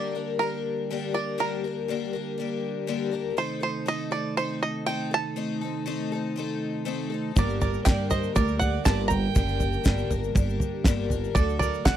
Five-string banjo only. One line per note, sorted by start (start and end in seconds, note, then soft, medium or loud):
0.00 0.36 D5 medium
0.39 1.16 A#4 medium
1.14 1.40 D5 medium
1.40 1.86 A#4 medium
3.38 3.62 C5 medium
3.63 3.88 C5 medium
3.88 4.12 D#5 loud
4.12 4.37 D5 medium
4.37 4.62 C5 medium
4.63 4.86 D#5 loud
4.86 5.12 G5 loud
5.14 6.09 A5 loud
7.39 7.60 D5 medium
7.62 7.87 D5 medium
7.85 8.11 G5 medium
8.11 8.34 D#5 medium
8.36 8.62 D5 loud
8.59 8.85 F#5 medium
8.85 9.08 A5 loud
9.08 10.06 A#5 loud
11.35 11.58 D5 loud
11.59 11.86 D5 medium
11.85 11.97 F#5 loud